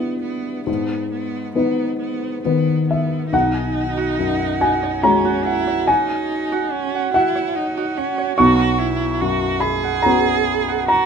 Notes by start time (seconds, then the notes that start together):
Already playing: G2 B3 E4 B4
0.22 B3
0.67 G#2 B3
1.12 B3
1.55 B3 D#4 B4
2.00 B3
2.44 D#3 B3 B4
2.88 B3 E5
3.33 B1 D#4 F#4 F#5
3.54 G#5
3.97 F#4
4.19 F#2
4.39 F#5
4.61 F#4 G#5
4.82 C#5
5.02 G#3 C#4 F#4 A#5
5.25 F#4
5.45 E4 F#5
5.67 C#5
5.87 D#4 F#4 G#5
6.10 G#5
6.52 F#4
6.72 C#4
6.95 F#5
7.14 E4 F#4 F#5
7.35 C#5
7.56 D#4
7.77 F#4
7.97 C#4 F#5
8.18 C#5
8.38 B1 B3 F#4 C#6
8.60 C#6
8.79 E4
9.21 F#2 F#4
9.60 G#4 B5
9.84 F#5
10.02 B3 C#4 F#4 A#5
10.68 F#5
10.88 F#4 A#5